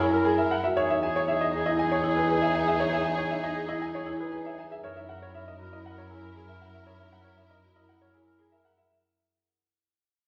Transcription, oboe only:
0, 0, Header, 1, 2, 480
1, 0, Start_track
1, 0, Tempo, 508475
1, 720, Time_signature, 4, 2, 24, 8
1, 9698, End_track
2, 0, Start_track
2, 0, Title_t, "Oboe"
2, 0, Program_c, 0, 68
2, 113, Note_on_c, 0, 70, 49
2, 283, Note_off_c, 0, 70, 0
2, 361, Note_on_c, 0, 70, 37
2, 531, Note_off_c, 0, 70, 0
2, 728, Note_on_c, 0, 68, 37
2, 899, Note_off_c, 0, 68, 0
2, 975, Note_on_c, 0, 68, 46
2, 1146, Note_off_c, 0, 68, 0
2, 1227, Note_on_c, 0, 68, 47
2, 1396, Note_off_c, 0, 68, 0
2, 1462, Note_on_c, 0, 68, 60
2, 1636, Note_off_c, 0, 68, 0
2, 1717, Note_on_c, 0, 68, 58
2, 1889, Note_off_c, 0, 68, 0
2, 1968, Note_on_c, 0, 68, 70
2, 2138, Note_off_c, 0, 68, 0
2, 2213, Note_on_c, 0, 68, 74
2, 2385, Note_off_c, 0, 68, 0
2, 2464, Note_on_c, 0, 68, 63
2, 2635, Note_off_c, 0, 68, 0
2, 2709, Note_on_c, 0, 68, 71
2, 2881, Note_off_c, 0, 68, 0
2, 2960, Note_on_c, 0, 68, 68
2, 3131, Note_off_c, 0, 68, 0
2, 3213, Note_on_c, 0, 68, 62
2, 3382, Note_off_c, 0, 68, 0
2, 3452, Note_on_c, 0, 68, 62
2, 3624, Note_off_c, 0, 68, 0
2, 3701, Note_on_c, 0, 68, 50
2, 3873, Note_off_c, 0, 68, 0
2, 3945, Note_on_c, 0, 68, 45
2, 4118, Note_off_c, 0, 68, 0
2, 4188, Note_on_c, 0, 68, 34
2, 4363, Note_off_c, 0, 68, 0
2, 4559, Note_on_c, 0, 70, 33
2, 4733, Note_off_c, 0, 70, 0
2, 4809, Note_on_c, 0, 70, 44
2, 4982, Note_off_c, 0, 70, 0
2, 5061, Note_on_c, 0, 70, 41
2, 5233, Note_off_c, 0, 70, 0
2, 5307, Note_on_c, 0, 70, 55
2, 5480, Note_off_c, 0, 70, 0
2, 5570, Note_on_c, 0, 70, 60
2, 5737, Note_off_c, 0, 70, 0
2, 5814, Note_on_c, 0, 70, 58
2, 5982, Note_off_c, 0, 70, 0
2, 6064, Note_on_c, 0, 70, 64
2, 6232, Note_off_c, 0, 70, 0
2, 6304, Note_on_c, 0, 70, 62
2, 6475, Note_off_c, 0, 70, 0
2, 6559, Note_on_c, 0, 70, 59
2, 6727, Note_off_c, 0, 70, 0
2, 6807, Note_on_c, 0, 70, 57
2, 6975, Note_off_c, 0, 70, 0
2, 7056, Note_on_c, 0, 70, 47
2, 7224, Note_off_c, 0, 70, 0
2, 7300, Note_on_c, 0, 70, 48
2, 7469, Note_off_c, 0, 70, 0
2, 7556, Note_on_c, 0, 70, 43
2, 7723, Note_off_c, 0, 70, 0
2, 7795, Note_on_c, 0, 70, 37
2, 7965, Note_off_c, 0, 70, 0
2, 8049, Note_on_c, 0, 70, 30
2, 8217, Note_off_c, 0, 70, 0
2, 9698, End_track
0, 0, End_of_file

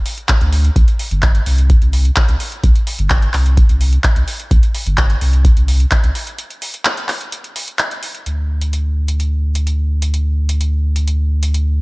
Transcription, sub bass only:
0, 0, Header, 1, 2, 480
1, 0, Start_track
1, 0, Tempo, 468750
1, 779, Time_signature, 4, 2, 24, 8
1, 12099, End_track
2, 0, Start_track
2, 0, Title_t, "Sub bass"
2, 0, Program_c, 0, 38
2, 420, Note_on_c, 0, 38, 84
2, 716, Note_off_c, 0, 38, 0
2, 778, Note_on_c, 0, 36, 101
2, 860, Note_off_c, 0, 36, 0
2, 1140, Note_on_c, 0, 31, 99
2, 1436, Note_off_c, 0, 31, 0
2, 1499, Note_on_c, 0, 36, 101
2, 1796, Note_off_c, 0, 36, 0
2, 1861, Note_on_c, 0, 36, 77
2, 2157, Note_off_c, 0, 36, 0
2, 2341, Note_on_c, 0, 36, 80
2, 2421, Note_off_c, 0, 36, 0
2, 2699, Note_on_c, 0, 36, 101
2, 2781, Note_off_c, 0, 36, 0
2, 3061, Note_on_c, 0, 31, 96
2, 3357, Note_off_c, 0, 31, 0
2, 3420, Note_on_c, 0, 36, 96
2, 3717, Note_off_c, 0, 36, 0
2, 3781, Note_on_c, 0, 36, 77
2, 4077, Note_off_c, 0, 36, 0
2, 4261, Note_on_c, 0, 36, 82
2, 4340, Note_off_c, 0, 36, 0
2, 4618, Note_on_c, 0, 36, 102
2, 4700, Note_off_c, 0, 36, 0
2, 4980, Note_on_c, 0, 31, 97
2, 5276, Note_off_c, 0, 31, 0
2, 5339, Note_on_c, 0, 36, 102
2, 5636, Note_off_c, 0, 36, 0
2, 5699, Note_on_c, 0, 36, 77
2, 5996, Note_off_c, 0, 36, 0
2, 6179, Note_on_c, 0, 36, 82
2, 6259, Note_off_c, 0, 36, 0
2, 8460, Note_on_c, 0, 38, 84
2, 12099, Note_off_c, 0, 38, 0
2, 12099, End_track
0, 0, End_of_file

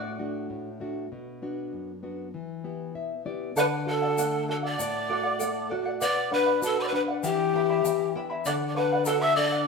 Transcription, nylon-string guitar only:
0, 0, Header, 1, 2, 480
1, 0, Start_track
1, 0, Tempo, 610998
1, 877, Time_signature, 2, 2, 24, 8
1, 7599, End_track
2, 0, Start_track
2, 0, Title_t, "Nylon-string guitar"
2, 0, Program_c, 0, 24
2, 0, Note_on_c, 0, 45, 60
2, 148, Note_on_c, 0, 57, 46
2, 151, Note_on_c, 0, 62, 41
2, 152, Note_on_c, 0, 66, 49
2, 379, Note_off_c, 0, 45, 0
2, 393, Note_on_c, 0, 45, 60
2, 537, Note_off_c, 0, 57, 0
2, 537, Note_off_c, 0, 62, 0
2, 539, Note_off_c, 0, 66, 0
2, 630, Note_on_c, 0, 57, 43
2, 636, Note_on_c, 0, 62, 41
2, 638, Note_on_c, 0, 66, 51
2, 826, Note_off_c, 0, 57, 0
2, 827, Note_off_c, 0, 62, 0
2, 830, Note_off_c, 0, 66, 0
2, 861, Note_off_c, 0, 45, 0
2, 879, Note_on_c, 0, 47, 58
2, 1117, Note_on_c, 0, 59, 43
2, 1121, Note_on_c, 0, 62, 40
2, 1124, Note_on_c, 0, 66, 49
2, 1345, Note_off_c, 0, 47, 0
2, 1356, Note_on_c, 0, 42, 60
2, 1503, Note_off_c, 0, 59, 0
2, 1504, Note_off_c, 0, 62, 0
2, 1507, Note_off_c, 0, 66, 0
2, 1593, Note_on_c, 0, 59, 45
2, 1597, Note_on_c, 0, 62, 41
2, 1601, Note_on_c, 0, 66, 49
2, 1788, Note_off_c, 0, 59, 0
2, 1791, Note_off_c, 0, 62, 0
2, 1793, Note_off_c, 0, 66, 0
2, 1824, Note_off_c, 0, 42, 0
2, 1839, Note_on_c, 0, 52, 60
2, 2076, Note_on_c, 0, 59, 43
2, 2079, Note_on_c, 0, 64, 41
2, 2080, Note_on_c, 0, 67, 49
2, 2306, Note_off_c, 0, 52, 0
2, 2317, Note_off_c, 0, 67, 0
2, 2318, Note_on_c, 0, 47, 58
2, 2320, Note_on_c, 0, 76, 61
2, 2463, Note_off_c, 0, 59, 0
2, 2464, Note_off_c, 0, 64, 0
2, 2543, Note_off_c, 0, 76, 0
2, 2556, Note_on_c, 0, 59, 43
2, 2559, Note_on_c, 0, 64, 42
2, 2560, Note_on_c, 0, 74, 61
2, 2565, Note_on_c, 0, 67, 50
2, 2751, Note_off_c, 0, 59, 0
2, 2752, Note_off_c, 0, 64, 0
2, 2756, Note_off_c, 0, 67, 0
2, 2784, Note_off_c, 0, 74, 0
2, 2786, Note_off_c, 0, 47, 0
2, 2795, Note_on_c, 0, 50, 59
2, 3035, Note_on_c, 0, 66, 52
2, 3271, Note_off_c, 0, 66, 0
2, 3283, Note_on_c, 0, 57, 57
2, 3515, Note_off_c, 0, 57, 0
2, 3526, Note_on_c, 0, 66, 53
2, 3730, Note_off_c, 0, 50, 0
2, 3757, Note_off_c, 0, 66, 0
2, 3764, Note_on_c, 0, 45, 67
2, 4004, Note_on_c, 0, 66, 56
2, 4235, Note_off_c, 0, 66, 0
2, 4252, Note_on_c, 0, 57, 58
2, 4480, Note_off_c, 0, 57, 0
2, 4493, Note_on_c, 0, 66, 57
2, 4693, Note_off_c, 0, 45, 0
2, 4720, Note_off_c, 0, 66, 0
2, 4723, Note_on_c, 0, 47, 69
2, 4963, Note_on_c, 0, 62, 54
2, 5194, Note_off_c, 0, 62, 0
2, 5201, Note_on_c, 0, 66, 59
2, 5433, Note_off_c, 0, 66, 0
2, 5441, Note_on_c, 0, 62, 53
2, 5652, Note_off_c, 0, 47, 0
2, 5673, Note_off_c, 0, 62, 0
2, 5682, Note_on_c, 0, 52, 64
2, 5921, Note_on_c, 0, 59, 55
2, 6152, Note_off_c, 0, 59, 0
2, 6154, Note_off_c, 0, 52, 0
2, 6163, Note_on_c, 0, 52, 57
2, 6393, Note_off_c, 0, 52, 0
2, 6408, Note_on_c, 0, 59, 50
2, 6636, Note_off_c, 0, 59, 0
2, 6643, Note_on_c, 0, 50, 61
2, 6880, Note_on_c, 0, 62, 53
2, 7111, Note_off_c, 0, 62, 0
2, 7120, Note_on_c, 0, 66, 58
2, 7350, Note_off_c, 0, 66, 0
2, 7363, Note_on_c, 0, 62, 55
2, 7569, Note_off_c, 0, 50, 0
2, 7591, Note_off_c, 0, 62, 0
2, 7599, End_track
0, 0, End_of_file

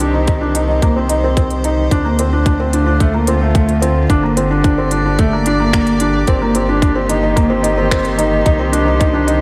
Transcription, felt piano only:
0, 0, Header, 1, 2, 480
1, 0, Start_track
1, 0, Key_signature, -2, "minor"
1, 0, Tempo, 545455
1, 1689, Time_signature, 4, 2, 24, 8
1, 8283, End_track
2, 0, Start_track
2, 0, Title_t, "Felt piano"
2, 0, Program_c, 0, 0
2, 0, Note_on_c, 0, 62, 70
2, 89, Note_off_c, 0, 62, 0
2, 123, Note_on_c, 0, 63, 67
2, 210, Note_off_c, 0, 63, 0
2, 238, Note_on_c, 0, 63, 74
2, 327, Note_off_c, 0, 63, 0
2, 358, Note_on_c, 0, 62, 65
2, 448, Note_off_c, 0, 62, 0
2, 484, Note_on_c, 0, 63, 68
2, 571, Note_off_c, 0, 63, 0
2, 602, Note_on_c, 0, 63, 65
2, 690, Note_off_c, 0, 63, 0
2, 729, Note_on_c, 0, 58, 76
2, 814, Note_off_c, 0, 58, 0
2, 848, Note_on_c, 0, 60, 68
2, 934, Note_off_c, 0, 60, 0
2, 964, Note_on_c, 0, 63, 74
2, 1051, Note_off_c, 0, 63, 0
2, 1090, Note_on_c, 0, 60, 72
2, 1175, Note_off_c, 0, 60, 0
2, 1209, Note_on_c, 0, 60, 78
2, 1380, Note_off_c, 0, 60, 0
2, 1450, Note_on_c, 0, 63, 73
2, 1620, Note_off_c, 0, 63, 0
2, 1687, Note_on_c, 0, 62, 89
2, 1773, Note_off_c, 0, 62, 0
2, 1803, Note_on_c, 0, 58, 70
2, 1891, Note_off_c, 0, 58, 0
2, 1931, Note_on_c, 0, 60, 70
2, 2016, Note_off_c, 0, 60, 0
2, 2049, Note_on_c, 0, 62, 73
2, 2134, Note_off_c, 0, 62, 0
2, 2168, Note_on_c, 0, 62, 75
2, 2254, Note_off_c, 0, 62, 0
2, 2286, Note_on_c, 0, 60, 65
2, 2373, Note_off_c, 0, 60, 0
2, 2406, Note_on_c, 0, 62, 72
2, 2492, Note_off_c, 0, 62, 0
2, 2521, Note_on_c, 0, 62, 71
2, 2609, Note_off_c, 0, 62, 0
2, 2643, Note_on_c, 0, 57, 86
2, 2731, Note_off_c, 0, 57, 0
2, 2765, Note_on_c, 0, 58, 68
2, 2852, Note_off_c, 0, 58, 0
2, 2886, Note_on_c, 0, 60, 74
2, 2972, Note_off_c, 0, 60, 0
2, 3003, Note_on_c, 0, 57, 70
2, 3091, Note_off_c, 0, 57, 0
2, 3121, Note_on_c, 0, 57, 80
2, 3295, Note_off_c, 0, 57, 0
2, 3360, Note_on_c, 0, 60, 77
2, 3534, Note_off_c, 0, 60, 0
2, 3606, Note_on_c, 0, 62, 91
2, 3692, Note_off_c, 0, 62, 0
2, 3724, Note_on_c, 0, 58, 74
2, 3811, Note_off_c, 0, 58, 0
2, 3845, Note_on_c, 0, 60, 73
2, 3932, Note_off_c, 0, 60, 0
2, 3966, Note_on_c, 0, 62, 70
2, 4052, Note_off_c, 0, 62, 0
2, 4086, Note_on_c, 0, 62, 81
2, 4173, Note_off_c, 0, 62, 0
2, 4207, Note_on_c, 0, 60, 71
2, 4293, Note_off_c, 0, 60, 0
2, 4325, Note_on_c, 0, 62, 72
2, 4412, Note_off_c, 0, 62, 0
2, 4450, Note_on_c, 0, 62, 67
2, 4535, Note_off_c, 0, 62, 0
2, 4566, Note_on_c, 0, 57, 86
2, 4653, Note_off_c, 0, 57, 0
2, 4691, Note_on_c, 0, 58, 73
2, 4776, Note_off_c, 0, 58, 0
2, 4813, Note_on_c, 0, 62, 82
2, 4897, Note_off_c, 0, 62, 0
2, 4929, Note_on_c, 0, 58, 76
2, 5014, Note_off_c, 0, 58, 0
2, 5046, Note_on_c, 0, 58, 75
2, 5218, Note_off_c, 0, 58, 0
2, 5289, Note_on_c, 0, 62, 71
2, 5460, Note_off_c, 0, 62, 0
2, 5529, Note_on_c, 0, 60, 87
2, 5614, Note_off_c, 0, 60, 0
2, 5647, Note_on_c, 0, 58, 74
2, 5733, Note_off_c, 0, 58, 0
2, 5766, Note_on_c, 0, 60, 69
2, 5853, Note_off_c, 0, 60, 0
2, 5885, Note_on_c, 0, 62, 71
2, 5972, Note_off_c, 0, 62, 0
2, 5999, Note_on_c, 0, 62, 79
2, 6088, Note_off_c, 0, 62, 0
2, 6121, Note_on_c, 0, 60, 69
2, 6209, Note_off_c, 0, 60, 0
2, 6243, Note_on_c, 0, 63, 72
2, 6331, Note_off_c, 0, 63, 0
2, 6362, Note_on_c, 0, 63, 75
2, 6450, Note_off_c, 0, 63, 0
2, 6478, Note_on_c, 0, 58, 89
2, 6567, Note_off_c, 0, 58, 0
2, 6599, Note_on_c, 0, 60, 74
2, 6688, Note_off_c, 0, 60, 0
2, 6713, Note_on_c, 0, 63, 82
2, 6804, Note_off_c, 0, 63, 0
2, 6842, Note_on_c, 0, 60, 78
2, 6930, Note_off_c, 0, 60, 0
2, 6966, Note_on_c, 0, 60, 83
2, 7138, Note_off_c, 0, 60, 0
2, 7198, Note_on_c, 0, 63, 76
2, 7373, Note_off_c, 0, 63, 0
2, 7440, Note_on_c, 0, 63, 100
2, 7529, Note_off_c, 0, 63, 0
2, 7563, Note_on_c, 0, 60, 79
2, 7650, Note_off_c, 0, 60, 0
2, 7677, Note_on_c, 0, 62, 73
2, 7767, Note_off_c, 0, 62, 0
2, 7801, Note_on_c, 0, 63, 70
2, 7889, Note_off_c, 0, 63, 0
2, 7916, Note_on_c, 0, 63, 90
2, 8006, Note_off_c, 0, 63, 0
2, 8038, Note_on_c, 0, 62, 74
2, 8128, Note_off_c, 0, 62, 0
2, 8158, Note_on_c, 0, 63, 84
2, 8247, Note_off_c, 0, 63, 0
2, 8283, End_track
0, 0, End_of_file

